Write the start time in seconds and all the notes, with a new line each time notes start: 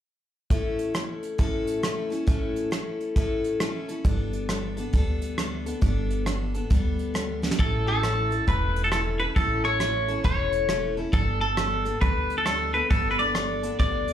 0.50 A2 A3 C#4 E4 A4, kick, closed hi-hat
0.79 closed hi-hat
0.94 A3 C#4 E4 A4, cross-stick, closed hi-hat
1.23 closed hi-hat
1.38 A2 A3 C#4 E4 A4, kick, closed hi-hat
1.67 closed hi-hat
1.83 A3 C#4 E4 A4, cross-stick, closed hi-hat
2.10 C#4 E4 A4, closed hi-hat
2.27 A2 A3 C#4 E4 A4, kick, closed hi-hat
2.56 closed hi-hat
2.71 A3 C#4 E4 A4, cross-stick, closed hi-hat
3.00 closed hi-hat
3.16 A2 A3 C#4 E4 A4, kick, closed hi-hat
3.44 closed hi-hat
3.60 A3 C#4 E4 A4, cross-stick, closed hi-hat
3.88 C#4 E4 A4, closed hi-hat
4.04 G1 G3 B3 D4 A4, kick, closed hi-hat
4.33 closed hi-hat
4.49 G3 B3 D4 A4, cross-stick, closed hi-hat
4.77 B3 D4 A4, closed hi-hat
4.93 D2 G3 B3 D4 A4, kick, closed hi-hat
5.22 closed hi-hat
5.38 G3 B3 D4 A4, cross-stick, closed hi-hat
5.66 B3 D4 A4, closed hi-hat
5.81 G1 G3 B3 D4 A4, kick, closed hi-hat
6.10 closed hi-hat
6.26 G3 B3 D4 A4, cross-stick, closed hi-hat
6.54 B3 D4 A4, closed hi-hat
6.70 D2 G3 B3 D4 A4, kick, closed hi-hat
6.99 closed hi-hat
7.14 G3 B3 D4 A4, cross-stick, closed hi-hat
7.42 B3 D4 A4, snare
7.51 snare
7.59 A1 A2 A3 C#4 E4 A4, kick, closed hi-hat
7.87 C#4 E4 A4
8.03 A2 A3 C#4 E4 A4, cross-stick, closed hi-hat
8.31 C#4 E4 A4, closed hi-hat
8.47 E1 A3 C#4 E4 A4 B4, kick, closed hi-hat
8.76 closed hi-hat
8.84 A4
8.91 A2 A3 C#4 E4 A4, cross-stick, closed hi-hat
9.20 C#4 E4 A4 B4
9.36 A1 A2 A3 C#4 E4 A4, kick, closed hi-hat
9.64 C#4 E4 A4 C#5
9.80 A2 A3 C#4 E4 A4, cross-stick, closed hi-hat
10.08 C#4 E4 A4, closed hi-hat
10.24 E1 A3 C#4 E4 A4 C#5, kick, closed hi-hat
10.52 closed hi-hat
10.69 A2 A3 C#4 E4 A4, cross-stick, closed hi-hat
10.97 C#4 E4 A4
11.13 G1 G3 B3 D4 A4, kick, closed hi-hat
11.41 B3 D4 A4
11.57 G3 B3 D4 A4, cross-stick, closed hi-hat
11.85 B3 D4 A4, closed hi-hat
12.01 D2 G3 B3 D4 A4 B4, kick, closed hi-hat
12.30 closed hi-hat
12.38 A4
12.46 G3 B3 D4 A4, cross-stick, closed hi-hat
12.74 B3 D4 A4 B4
12.90 G1 G3 B3 D4 A4, kick, closed hi-hat
13.11 B4
13.19 B3 D4 A4 D5
13.35 G3 B3 D4 A4, cross-stick, closed hi-hat
13.63 B3 D4 A4, closed hi-hat
13.79 D2 G3 B3 D4 A4 D5, kick, closed hi-hat
14.08 closed hi-hat